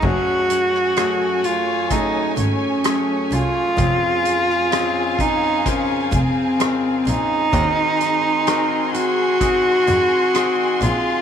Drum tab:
CC |x---------------|----------------|----------------|
HH |--x-x-x-x-x-x-x-|x-x-x-x-x-x-x-x-|x-x-x-x-x-x-x-x-|
SD |---rr-------r---|---rr-------r---|----r-------r---|
BD |o-------o-------|o-----o-o-o-----|o-------o-------|